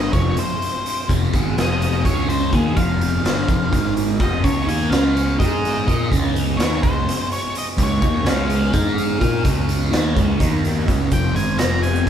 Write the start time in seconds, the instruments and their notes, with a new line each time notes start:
Already playing: picked electric bass G1, distorted electric guitar G2 D3 G3, transistor combo organ F3 G#3 C4 D#4 F4, lead electric guitar D#5
0.13 picked electric bass F1, distorted electric guitar F2 C3 F3, lead electric guitar C#5, kick, closed hi-hat
0.37 lead electric guitar C5, closed hi-hat
0.62 closed hi-hat
0.86 closed hi-hat
1.08 picked electric bass F1, distorted electric guitar F2 C3 F3, kick, closed hi-hat
1.33 picked electric bass G#1, distorted electric guitar G#2 D#3 G#3, kick, closed hi-hat
1.57 picked electric bass F1, distorted electric guitar F2 C3 F3, lead electric guitar D#5, snare, closed hi-hat
1.82 closed hi-hat
2.05 picked electric bass C#2, distorted electric guitar C#3 G#3 C#4, transistor combo organ C#3 C#4 G#4 C#5, lead electric guitar C#5, kick, closed hi-hat
2.29 lead electric guitar C5, closed hi-hat
2.52 picked electric bass D#2, distorted electric guitar D#3 A#3 D#4, transistor combo organ C4 D#4 F4, lead electric guitar G#4, kick, closed hi-hat
2.76 picked electric bass F1, distorted electric guitar F2 C3 F3, lead electric guitar F5, kick, closed hi-hat
3.01 closed hi-hat
3.23 picked electric bass G1, distorted electric guitar G2 D3 G3, snare, closed hi-hat
3.48 picked electric bass F1, distorted electric guitar F2 C3 F3, kick, closed hi-hat
3.72 picked electric bass G#1, distorted electric guitar G#2 D#3 G#3, transistor combo organ D#3 G#3 D#5, kick, closed hi-hat
3.97 closed hi-hat
4.18 picked electric bass F1, distorted electric guitar F2 C3 F3, transistor combo organ C4 F4 G#4 C5, lead electric guitar D#5, kick, closed hi-hat
4.43 picked electric bass C#2, distorted electric guitar C#3 G#3 C#4, transistor combo organ G#3 C#4 C#5, lead electric guitar C#5, kick, closed hi-hat
4.66 picked electric bass D#2, distorted electric guitar D#3 A#3 D#4, lead electric guitar G#5, closed hi-hat
4.90 picked electric bass C#2, distorted electric guitar C#3 G#3 C#4, lead electric guitar F5, snare, closed hi-hat
5.17 closed hi-hat
5.39 picked electric bass G#2, transistor combo organ D#3 D#5, distorted electric guitar G#3 D#4 G#4, lead electric guitar D#5, kick, closed hi-hat
5.65 snare, closed hi-hat
5.86 picked electric bass A#2, transistor combo organ G#3 C#4 D#5, distorted electric guitar A#3 F4 A#4, kick, closed hi-hat
6.09 picked electric bass C#2, distorted electric guitar C#3 G#3 C#4, kick, closed hi-hat
6.36 closed hi-hat
6.57 picked electric bass D#2, distorted electric guitar D#3 A#3 D#4, lead electric guitar C#5, snare, closed hi-hat
6.83 picked electric bass C#2, distorted electric guitar C#3 G#3 C#4, lead electric guitar C5, kick, closed hi-hat
7.09 snare, closed hi-hat
7.32 lead electric guitar C#5, closed hi-hat
7.55 lead electric guitar D#5, closed hi-hat
7.77 picked electric bass C#2, distorted electric guitar C#3 G#3 C#4, kick, closed hi-hat
7.83 lead electric guitar C#5
8.01 picked electric bass D#2, distorted electric guitar D#3 A#3 D#4, kick, closed hi-hat
8.24 picked electric bass C#2, distorted electric guitar C#3 G#3 C#4, snare, closed hi-hat
8.29 lead electric guitar F5
8.50 closed hi-hat
8.72 picked electric bass G#2, transistor combo organ D#3 G#3 D#4 D#5, distorted electric guitar G#3 D#4 G#4, kick, closed hi-hat
8.98 closed hi-hat
9.19 picked electric bass A#2, distorted electric guitar A#3 F4 A#4, transistor combo organ C#4 C#5, kick, closed hi-hat
9.44 picked electric bass C#2, distorted electric guitar C#3 G#3 C#4, kick, closed hi-hat
9.69 closed hi-hat
9.91 picked electric bass D#2, distorted electric guitar D#3 A#3 D#4, snare, closed hi-hat
10.13 picked electric bass C#2, distorted electric guitar C#3 G#3 C#4, kick, closed hi-hat
10.39 picked electric bass D#2, distorted electric guitar D#3 A#3 D#4, transistor combo organ D#3 A#3 A#4 D#5, kick, snare, closed hi-hat
10.65 snare, closed hi-hat
10.87 picked electric bass C#2, distorted electric guitar C#3 G#3 C#4, transistor combo organ G#3 C#4 G#4 C#5, kick, closed hi-hat
11.11 picked electric bass F1, distorted electric guitar F2 C3 F3, transistor combo organ C4 F4 G#4 C5, lead electric guitar G5, kick, closed hi-hat, maracas
11.34 picked electric bass G#1, distorted electric guitar G#2 D#3 G#3, lead electric guitar G#5, closed hi-hat
11.58 picked electric bass F1, distorted electric guitar F2 C3 F3, lead electric guitar A#5, snare, closed hi-hat, maracas
11.83 lead electric guitar G#5, closed hi-hat, maracas
11.96 maracas